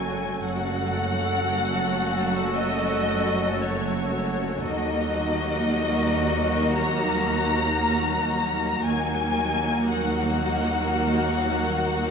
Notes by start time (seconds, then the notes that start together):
Already playing: F#1 F#2 F#3 A3 C#4 F#4 A4 C#5 G#5
0.43 F#1 F#2 F#3 A3 C#4 F#4 A4 F#5
2.55 D#5
3.61 C#5
4.64 D#2 F#3 A#3 D#4 F#4 A#4 D#5 F#5
6.76 A#5
8.86 D#2 F#3 A#3 D#4 F#4 A#4 F#5 G#5
9.92 F#5